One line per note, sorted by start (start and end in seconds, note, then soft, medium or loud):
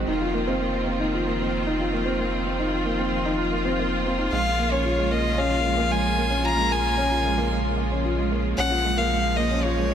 0.00 4.29 D#3 medium
0.00 0.08 D#4 medium
0.08 4.30 F1 medium
0.08 4.29 F3 medium
0.08 9.94 A#3 medium
0.08 4.29 C4 medium
0.08 0.20 D#4 loud
0.08 8.54 F4 medium
0.21 0.34 F4 medium
0.34 0.47 A#3 medium
0.48 0.60 C4 loud
0.60 0.68 A#3 medium
0.87 1.00 C4 medium
1.00 1.13 D#4 medium
1.14 1.27 F4 medium
1.26 1.40 A#3 medium
1.40 1.48 C4 medium
1.67 1.80 D#4 loud
1.80 1.93 F4 medium
1.93 2.06 A#3 medium
2.06 2.19 C4 loud
2.20 2.28 A#3 medium
2.46 2.59 C4 medium
2.60 2.72 D#4 medium
2.72 2.85 F4 medium
2.86 2.99 A#3 medium
2.99 3.07 C4 medium
3.25 3.39 D#4 loud
3.38 3.52 F4 medium
3.52 3.65 A#3 medium
3.65 3.78 C4 loud
3.79 3.87 A#3 medium
4.06 4.19 C4 medium
4.18 4.32 D#4 medium
4.32 8.55 A#1 medium
4.32 8.53 C#3 medium
4.32 8.53 F3 medium
4.32 4.40 G#3 medium
4.32 9.94 G#3 medium
4.32 4.73 F5 loud
4.59 4.72 A#3 medium
4.72 4.85 C#4 medium
4.72 5.13 C#5 medium
4.85 4.98 F4 medium
4.98 5.11 G#3 medium
5.11 5.19 A#3 medium
5.11 5.40 D#5 medium
5.38 5.51 C#4 loud
5.38 5.93 F5 loud
5.51 5.64 F4 medium
5.64 5.77 G#3 medium
5.78 5.91 A#3 loud
5.90 5.99 G#3 medium
5.90 6.47 G#5 loud
6.17 6.30 A#3 medium
6.30 6.44 C#4 medium
6.43 6.57 F4 medium
6.43 6.74 A#5 loud
6.57 6.70 G#3 medium
6.71 6.79 A#3 medium
6.71 7.52 G#5 loud
6.98 7.11 C#4 medium
7.11 7.24 F4 medium
7.25 7.37 G#3 medium
7.38 7.51 A#3 loud
7.51 7.59 G#3 medium
7.78 7.90 A#3 medium
7.91 8.04 C#4 medium
8.05 8.17 F4 medium
8.18 8.30 G#3 medium
8.31 8.39 A#3 medium
8.57 9.94 A#1 medium
8.57 9.94 C#3 medium
8.57 9.94 F3 medium
8.57 9.94 F#3 medium
8.57 8.70 C#4 medium
8.57 8.99 F#5 loud
8.71 8.83 F4 medium
8.84 8.97 G#3 medium
8.97 9.10 A#3 loud
8.97 9.38 F5 loud
9.11 9.19 G#3 medium
9.36 9.50 A#3 medium
9.36 9.65 D#5 loud
9.51 9.63 C#4 medium
9.63 9.77 F4 medium
9.63 9.94 C#5 loud
9.78 9.90 G#3 medium
9.91 9.94 A#3 medium